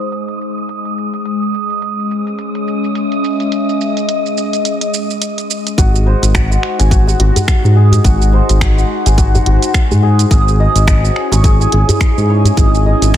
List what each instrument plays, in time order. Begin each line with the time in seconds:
Already playing: ambient pad G#3 D#4 G#4 C5, synth texture D#6
0.00 closed hi-hat, shaker
0.12 closed hi-hat, shaker
0.28 closed hi-hat, shaker
0.41 shaker
0.58 shaker
0.69 closed hi-hat, shaker
0.85 closed hi-hat, shaker
0.98 shaker
1.14 closed hi-hat, shaker
1.25 closed hi-hat, shaker
1.42 shaker
1.54 shaker
1.70 closed hi-hat, shaker
1.80 ambient pad C#4, closed hi-hat, shaker
1.99 shaker
2.11 shaker
2.27 ambient pad D#5, closed hi-hat, shaker
2.39 closed hi-hat, shaker
2.53 ambient pad E5, closed hi-hat, shaker
2.68 shaker
2.84 shaker
2.95 closed hi-hat, shaker
3.12 closed hi-hat, shaker
3.24 shaker
3.40 closed hi-hat, shaker
3.52 closed hi-hat, shaker
3.69 shaker
3.81 shaker
3.97 closed hi-hat, shaker
4.09 closed hi-hat, shaker
4.26 shaker
4.38 shaker
4.53 closed hi-hat, shaker
4.65 closed hi-hat, shaker
4.81 closed hi-hat, shaker
4.94 shaker
5.11 shaker
5.22 closed hi-hat, shaker
5.38 closed hi-hat, shaker
5.51 shaker
5.67 closed hi-hat, shaker
5.78 analog synth bass G#1, santur F#4, kick, closed hi-hat, shaker
5.94 djembe slap, shaker
6.06 santur C5
6.22 analog synth bass G#1, closed hi-hat, djembe slap, shaker
6.28 ambient pad D#4
6.35 santur F#4, finger snap, kick, closed hi-hat, shaker
6.51 santur F#5, shaker
6.59 ambient pad G#5
6.63 finger snap
6.79 analog synth bass G#1, santur G#5, closed hi-hat, djembe slap, djembe tone, shaker
6.91 santur F#4, kick, closed hi-hat, shaker
7.07 santur F#5, djembe tone, shaker
7.19 analog synth bass G#1, santur F#4, closed hi-hat
7.36 closed hi-hat, djembe bass, shaker
7.48 finger snap, kick, closed hi-hat, shaker
7.64 analog synth bass G#2, djembe tone, shaker
7.76 santur G#4
7.83 ambient pad C5
7.92 closed hi-hat, djembe bass, shaker
8.04 analog synth bass G#1, santur F#4, kick, closed hi-hat, shaker
8.21 djembe slap, shaker
8.32 santur C5, djembe tone
8.49 analog synth bass G#1, closed hi-hat, djembe slap, shaker
8.61 finger snap, kick, closed hi-hat, shaker
8.78 santur F#5, shaker
9.06 analog synth bass G#1, santur G#5, closed hi-hat, djembe slap, djembe tone, shaker
9.18 santur F#4, kick, closed hi-hat, shaker
9.34 santur F#5, djembe bass, shaker
9.46 analog synth bass G#1, santur F#4, closed hi-hat, djembe tone
9.62 closed hi-hat, shaker
9.74 finger snap, kick, closed hi-hat, shaker
9.91 analog synth bass G#2, djembe bass, shaker
10.03 santur G#4
10.19 closed hi-hat, shaker
10.31 analog synth bass G#1, ambient pad C#4, santur G#4, kick, closed hi-hat, shaker
10.48 djembe slap, shaker
10.60 santur D#5
10.65 ambient pad E4
10.75 analog synth bass G#1, closed hi-hat, djembe slap, shaker
10.88 santur G#4, finger snap, kick, closed hi-hat, shaker
11.04 santur G#5, shaker
11.16 finger snap
11.32 analog synth bass G#1, santur C#6, closed hi-hat, djembe slap, djembe tone, shaker
11.44 santur G#4, ambient pad D#5, kick, closed hi-hat, shaker
11.60 santur G#5, djembe tone, shaker
11.72 analog synth bass G#1, santur G#4, closed hi-hat
11.89 closed hi-hat, djembe bass, shaker
12.01 finger snap, kick, closed hi-hat, shaker
12.17 analog synth bass G#2, djembe tone, shaker
12.29 santur C#5
12.44 closed hi-hat, djembe bass, shaker
12.57 analog synth bass G#1, santur G#4, kick, closed hi-hat, shaker
12.74 djembe slap, shaker
12.86 santur D#5, djembe tone
13.02 analog synth bass G#1, closed hi-hat, djembe slap, shaker
13.14 kick